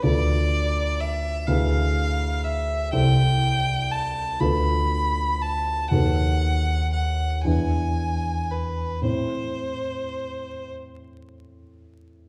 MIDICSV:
0, 0, Header, 1, 3, 480
1, 0, Start_track
1, 0, Key_signature, 0, "minor"
1, 0, Tempo, 966184
1, 23, Time_signature, 6, 3, 24, 8
1, 1943, Tempo, 1008403
1, 3383, Tempo, 1043478
1, 3863, Tempo, 1102941
1, 5303, Tempo, 1065719
1, 5753, End_track
2, 0, Start_track
2, 0, Title_t, "Violin"
2, 0, Program_c, 0, 40
2, 24, Note_on_c, 0, 74, 80
2, 498, Note_on_c, 0, 76, 70
2, 506, Note_off_c, 0, 74, 0
2, 730, Note_on_c, 0, 77, 66
2, 737, Note_off_c, 0, 76, 0
2, 1211, Note_on_c, 0, 76, 60
2, 1218, Note_off_c, 0, 77, 0
2, 1454, Note_off_c, 0, 76, 0
2, 1457, Note_on_c, 0, 79, 79
2, 1942, Note_on_c, 0, 81, 61
2, 1949, Note_off_c, 0, 79, 0
2, 2176, Note_on_c, 0, 83, 64
2, 2183, Note_off_c, 0, 81, 0
2, 2658, Note_on_c, 0, 81, 60
2, 2665, Note_off_c, 0, 83, 0
2, 2889, Note_off_c, 0, 81, 0
2, 2892, Note_on_c, 0, 78, 71
2, 3368, Note_off_c, 0, 78, 0
2, 3381, Note_on_c, 0, 78, 54
2, 3613, Note_off_c, 0, 78, 0
2, 3615, Note_on_c, 0, 80, 55
2, 4094, Note_on_c, 0, 71, 47
2, 4101, Note_off_c, 0, 80, 0
2, 4333, Note_off_c, 0, 71, 0
2, 4335, Note_on_c, 0, 72, 52
2, 5050, Note_off_c, 0, 72, 0
2, 5753, End_track
3, 0, Start_track
3, 0, Title_t, "Grand piano"
3, 0, Program_c, 1, 0
3, 0, Control_c, 1, 64, 127
3, 16, Note_on_c, 1, 38, 48
3, 18, Note_on_c, 1, 65, 36
3, 19, Note_on_c, 1, 69, 35
3, 23, Note_on_c, 1, 71, 37
3, 32, Control_c, 1, 64, 0
3, 113, Control_c, 1, 64, 127
3, 716, Note_off_c, 1, 38, 0
3, 717, Note_off_c, 1, 65, 0
3, 717, Note_off_c, 1, 69, 0
3, 719, Note_off_c, 1, 71, 0
3, 733, Note_on_c, 1, 38, 52
3, 734, Note_on_c, 1, 64, 39
3, 738, Note_on_c, 1, 68, 39
3, 739, Note_on_c, 1, 71, 37
3, 747, Control_c, 1, 64, 0
3, 827, Control_c, 1, 64, 127
3, 1435, Note_off_c, 1, 38, 0
3, 1436, Note_off_c, 1, 64, 0
3, 1438, Note_off_c, 1, 68, 0
3, 1438, Note_off_c, 1, 71, 0
3, 1454, Note_on_c, 1, 36, 49
3, 1454, Note_on_c, 1, 64, 34
3, 1457, Note_on_c, 1, 69, 34
3, 1459, Note_on_c, 1, 72, 34
3, 1468, Control_c, 1, 64, 0
3, 1539, Control_c, 1, 64, 127
3, 2158, Note_off_c, 1, 36, 0
3, 2158, Note_off_c, 1, 64, 0
3, 2159, Note_off_c, 1, 69, 0
3, 2160, Note_off_c, 1, 72, 0
3, 2177, Note_on_c, 1, 38, 48
3, 2177, Note_on_c, 1, 65, 37
3, 2181, Note_on_c, 1, 69, 38
3, 2183, Note_on_c, 1, 71, 36
3, 2186, Control_c, 1, 64, 0
3, 2264, Control_c, 1, 64, 127
3, 2877, Note_off_c, 1, 38, 0
3, 2877, Note_off_c, 1, 65, 0
3, 2879, Note_off_c, 1, 69, 0
3, 2880, Note_off_c, 1, 71, 0
3, 2896, Note_on_c, 1, 39, 44
3, 2896, Note_on_c, 1, 66, 32
3, 2900, Note_on_c, 1, 69, 32
3, 2902, Note_on_c, 1, 71, 32
3, 2904, Control_c, 1, 64, 0
3, 2989, Control_c, 1, 64, 127
3, 3600, Note_off_c, 1, 39, 0
3, 3600, Note_off_c, 1, 66, 0
3, 3602, Note_off_c, 1, 69, 0
3, 3603, Note_off_c, 1, 71, 0
3, 3617, Note_on_c, 1, 62, 32
3, 3618, Note_on_c, 1, 40, 43
3, 3619, Note_on_c, 1, 64, 31
3, 3623, Note_on_c, 1, 71, 32
3, 3627, Control_c, 1, 64, 0
3, 3715, Control_c, 1, 64, 127
3, 4314, Note_on_c, 1, 45, 33
3, 4318, Note_off_c, 1, 40, 0
3, 4318, Note_off_c, 1, 62, 0
3, 4318, Note_off_c, 1, 64, 0
3, 4318, Note_on_c, 1, 60, 28
3, 4321, Note_off_c, 1, 71, 0
3, 4324, Note_on_c, 1, 64, 26
3, 4329, Note_on_c, 1, 72, 28
3, 4343, Control_c, 1, 64, 0
3, 4419, Control_c, 1, 64, 127
3, 5750, Note_off_c, 1, 45, 0
3, 5752, Note_off_c, 1, 60, 0
3, 5753, Note_off_c, 1, 64, 0
3, 5753, Note_off_c, 1, 72, 0
3, 5753, End_track
0, 0, End_of_file